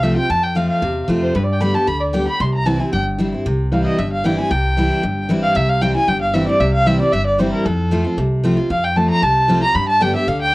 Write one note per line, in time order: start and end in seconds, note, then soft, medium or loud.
0.00 0.15 C2 medium
0.00 0.27 C3 medium
0.00 0.16 F3 medium
0.00 0.16 A3 medium
0.00 0.16 E5 medium
0.04 0.17 C4 medium
0.04 0.15 F4 medium
0.16 0.30 C4 soft
0.16 0.29 F4 medium
0.16 0.32 G5 loud
0.30 0.68 F2 medium
0.30 0.80 F2 loud
0.30 0.45 A5 loud
0.43 0.58 G5 medium
0.55 0.81 F3 medium
0.55 0.81 A3 medium
0.55 0.81 C4 medium
0.55 0.82 F4 loud
0.55 0.69 F5 medium
0.70 1.06 F5 medium
0.82 1.05 E2 medium
0.82 1.32 C3 medium
1.08 1.31 F2 medium
1.08 1.33 F3 medium
1.08 1.34 A3 medium
1.08 1.34 C4 medium
1.08 1.34 F4 medium
1.22 1.37 C5 medium
1.35 1.85 G2 loud
1.35 1.73 G2 medium
1.35 1.45 B4 medium
1.44 1.55 D5 medium
1.53 1.63 G5 medium
1.61 1.74 D3 medium
1.61 1.74 G3 medium
1.61 1.74 B3 medium
1.61 1.73 G4 medium
1.61 1.76 B5 loud
1.74 1.88 B3 soft
1.74 1.87 G4 medium
1.74 1.89 A5 medium
1.87 2.26 D2 medium
1.87 2.12 D3 medium
1.87 2.02 B5 loud
2.01 2.16 D5 medium
2.13 2.26 D3 medium
2.13 2.27 G3 medium
2.13 2.27 B3 medium
2.13 2.26 G4 loud
2.13 2.27 G5 medium
2.27 2.40 B3 soft
2.27 2.39 G4 medium
2.27 2.42 B5 loud
2.40 2.79 C2 medium
2.40 2.90 C3 loud
2.40 2.54 C6 medium
2.54 2.68 A#5 loud
2.66 2.79 E3 medium
2.66 2.79 G3 medium
2.66 2.80 C4 medium
2.66 2.78 E4 medium
2.66 2.82 A5 medium
2.79 2.93 C4 soft
2.79 2.92 E4 medium
2.79 2.92 G#5 medium
2.93 3.31 G1 medium
2.93 3.43 G2 medium
2.93 3.01 G5 medium
3.18 3.32 E3 medium
3.18 3.32 G3 medium
3.18 3.32 C4 medium
3.18 3.31 E4 medium
3.32 3.46 C4 medium
3.32 3.45 E4 medium
3.46 3.84 C2 medium
3.46 3.96 C3 loud
3.72 3.97 E3 medium
3.72 3.97 G3 medium
3.72 3.97 C4 medium
3.72 3.98 E4 loud
3.72 3.85 F5 medium
3.86 4.00 D#5 medium
3.98 4.37 G1 medium
3.98 4.48 G2 medium
3.98 4.12 E5 medium
4.12 4.27 F5 medium
4.24 4.37 E3 medium
4.24 4.38 G3 medium
4.24 4.38 C4 medium
4.24 4.37 E4 loud
4.24 4.38 G5 medium
4.38 4.51 C4 medium
4.38 4.50 E4 medium
4.38 4.52 G#5 loud
4.51 4.89 C2 medium
4.51 5.01 C3 loud
4.51 5.30 G5 medium
4.77 5.02 E3 medium
4.77 5.02 G3 medium
4.77 5.02 C4 medium
4.77 5.03 E4 loud
5.03 5.42 G1 medium
5.03 5.53 G2 medium
5.29 5.54 E3 medium
5.29 5.55 G3 medium
5.29 5.55 C4 medium
5.29 5.55 E4 loud
5.43 5.57 F5 loud
5.55 5.94 C2 loud
5.55 6.05 C3 loud
5.55 5.71 E5 medium
5.69 5.83 F5 loud
5.82 5.95 E3 medium
5.82 5.95 G3 loud
5.82 5.95 C4 medium
5.82 5.93 E4 medium
5.82 5.94 G5 medium
5.95 6.08 C4 soft
5.95 6.07 E4 medium
5.95 6.10 G#5 loud
6.08 6.46 G1 medium
6.08 6.58 G2 medium
6.08 6.21 G5 medium
6.21 6.35 F5 medium
6.34 6.47 E3 medium
6.34 6.47 G3 medium
6.34 6.48 C4 loud
6.34 6.46 E4 medium
6.34 6.47 E5 medium
6.47 6.61 C4 soft
6.47 6.60 E4 medium
6.47 6.62 D5 loud
6.60 6.99 C2 loud
6.60 7.10 C3 loud
6.60 6.73 E5 medium
6.74 6.88 F5 loud
6.86 6.99 E3 loud
6.86 7.00 G3 medium
6.86 7.00 C4 loud
6.86 6.98 E4 loud
6.86 7.00 E5 medium
7.00 7.13 C4 medium
7.00 7.12 E4 medium
7.00 7.14 D5 medium
7.12 7.51 G1 medium
7.12 7.63 G2 medium
7.12 7.25 E5 loud
7.26 7.41 D5 medium
7.38 7.64 E3 medium
7.38 7.64 G3 medium
7.38 7.65 C4 medium
7.38 7.65 E4 medium
7.38 7.52 C5 medium
7.52 7.67 A#4 medium
7.65 8.04 F2 medium
7.65 8.15 F2 loud
7.65 8.18 A4 medium
7.91 8.04 F3 medium
7.91 8.05 A3 medium
7.91 8.05 C4 medium
7.91 8.03 F4 loud
8.04 8.18 C4 medium
8.04 8.17 F4 medium
8.17 8.56 C2 medium
8.17 8.68 C3 medium
8.43 8.57 F3 medium
8.43 8.57 A3 medium
8.43 8.57 C4 medium
8.43 8.55 F4 loud
8.57 8.70 C4 soft
8.57 8.69 F4 medium
8.70 9.08 F2 loud
8.70 9.20 F2 loud
8.70 8.86 F5 medium
8.84 8.98 G5 loud
8.96 9.21 F3 medium
8.96 9.22 A3 loud
8.96 9.22 C4 medium
8.96 9.22 F4 loud
8.96 9.09 A5 loud
9.10 9.25 A#5 loud
9.23 9.61 C2 medium
9.23 9.62 A5 loud
9.48 9.61 F3 medium
9.48 9.62 A3 medium
9.48 9.62 C4 medium
9.48 9.61 F4 loud
9.62 9.75 C4 soft
9.62 9.74 F4 medium
9.62 9.77 A#5 loud
9.75 10.13 G2 medium
9.75 10.25 G2 loud
9.75 9.88 B5 loud
9.88 10.03 A5 loud
10.01 10.14 D3 medium
10.01 10.14 G3 medium
10.01 10.14 B3 medium
10.01 10.13 G4 loud
10.01 10.15 G5 loud
10.14 10.28 B3 soft
10.14 10.27 G4 medium
10.14 10.29 E5 medium
10.27 10.55 D2 medium
10.27 10.52 D3 medium
10.27 10.41 F5 loud
10.41 10.55 G5 loud